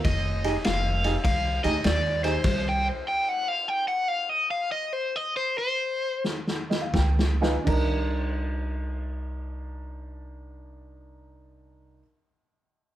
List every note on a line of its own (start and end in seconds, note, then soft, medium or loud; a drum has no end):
0.05 0.55 F1 medium
0.05 0.65 D#5 loud
0.05 kick loud
0.05 snare soft
0.05 ride medium
0.44 0.54 D#4 medium
0.44 0.54 G4 medium
0.44 0.55 G#4 medium
0.44 snare soft
0.44 ride medium
0.64 1.15 F1 medium
0.64 1.23 F5 loud
0.64 snare loud
0.64 ride medium
1.04 1.14 D#4 medium
1.04 1.15 G4 medium
1.04 1.15 G#4 medium
1.04 snare soft
1.04 ride medium
1.24 1.58 C2 loud
1.24 1.63 F5 medium
1.24 kick loud
1.24 snare soft
1.24 ride medium
1.64 1.82 D2 medium
1.64 1.74 D#4 medium
1.64 1.74 G4 medium
1.64 1.75 G#4 medium
1.64 1.85 D#5 medium
1.64 snare soft
1.64 ride medium
1.84 2.35 D#2 medium
1.84 2.23 D5 loud
1.84 snare loud
1.84 ride medium
2.24 2.34 D#4 medium
2.24 2.35 G4 medium
2.24 2.35 G#4 medium
2.24 4.92 C5 medium
2.24 snare soft
2.24 ride medium
2.44 2.88 C2 loud
2.44 kick loud
2.44 snare soft
2.44 crash medium
2.44 ride medium
2.69 2.86 G5 loud
3.08 3.29 G5 loud
3.29 3.48 F#5 medium
3.48 3.68 F5 medium
3.68 3.87 G5 medium
3.88 4.08 F#5 medium
4.08 4.29 F5 loud
4.29 4.49 D#5 loud
4.51 4.70 F5 loud
4.72 4.93 D#5 medium
4.93 5.16 C5 loud
5.16 5.35 D#5 medium
5.37 5.57 C5 loud
5.58 6.23 C5 loud
6.24 snare medium
6.47 snare medium
6.70 6.83 D#5 medium
6.70 snare medium
6.82 6.97 F5 medium
6.94 7.55 C#2 medium
6.94 7.38 G5 medium
6.94 kick medium
6.94 snare medium
7.19 snare medium
7.41 7.54 D#4 medium
7.41 7.54 F4 medium
7.41 7.54 B4 loud
7.41 7.65 G#5 medium
7.41 snare medium
7.64 12.01 C2 medium
7.64 11.98 D4 medium
7.64 12.00 D#4 medium
7.64 kick loud
7.64 crash medium
7.68 12.02 A#4 medium